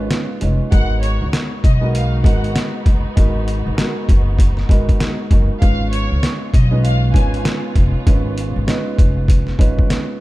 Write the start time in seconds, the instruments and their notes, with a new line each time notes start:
Already playing: grand piano G#3 C#4 D#4 F4 B4, string section B3 C#4 F4
0.11 snare, closed hi-hat
0.41 upright bass F1, grand piano G#3 C#4 D#4 F4 B4, closed hi-hat
0.71 upright bass G#1, string section G#3 B3 D#4 F#4, grand piano G#3 B3 D#4 F#4 A#4, violin section F#5, kick, closed hi-hat
1.02 violin section C#5, closed hi-hat
1.21 upright bass C#2
1.33 snare, closed hi-hat
1.64 upright bass B1, violin section D#5, kick, closed hi-hat
1.81 grand piano G#3 B3 D#4 F#4 A#4
1.95 violin section F5, closed hi-hat
2.23 upright bass G#1, grand piano G#3 B3 D#4 F#4 A#4, violin section F#5, kick, closed hi-hat
2.44 closed hi-hat
2.56 snare, closed hi-hat
2.86 upright bass F#1, kick, closed hi-hat
3.16 upright bass G#1, grand piano G#3 B3 D#4 F#4 A#4, kick, closed hi-hat
3.48 closed hi-hat
3.66 upright bass G#1
3.77 grand piano G#3 B3 D#4 F#4 A#4, snare, closed hi-hat
4.09 upright bass F#1, kick, closed hi-hat
4.39 kick, closed hi-hat
4.57 snare
4.69 upright bass G#1, grand piano G#3 B3 D#4 F#4 A#4, kick, closed hi-hat
4.89 kick, closed hi-hat
5.00 snare, closed hi-hat
5.30 upright bass F#1, grand piano G#3 B3 D#4 F#4 A#4, kick, closed hi-hat
5.61 upright bass G#1, grand piano G#3 C#4 D#4 F4 B4, string section B3 C#4 F4, violin section F5, kick, closed hi-hat
5.92 violin section C#5, closed hi-hat
6.11 upright bass C#2
6.23 snare, closed hi-hat
6.53 upright bass B1, violin section D#5, kick, closed hi-hat
6.71 grand piano G#3 C#4 D#4 F4 B4
6.84 violin section F5, closed hi-hat
7.14 upright bass G#1, grand piano G#3 C#4 D#4 F4 B4, violin section G#5, kick, closed hi-hat
7.34 closed hi-hat
7.45 snare, closed hi-hat
7.76 upright bass F1, kick, closed hi-hat
8.06 upright bass G#1, grand piano G#3 C#4 D#4 F4 B4, kick, closed hi-hat
8.38 closed hi-hat
8.56 upright bass G#1
8.67 grand piano G#3 C#4 D#4 F4 B4, snare, closed hi-hat
8.99 upright bass F1, kick, closed hi-hat
9.28 kick, closed hi-hat
9.47 snare
9.58 upright bass G#1, grand piano G#3 C#4 D#4 F4 B4, kick, closed hi-hat
9.79 kick
9.90 snare, closed hi-hat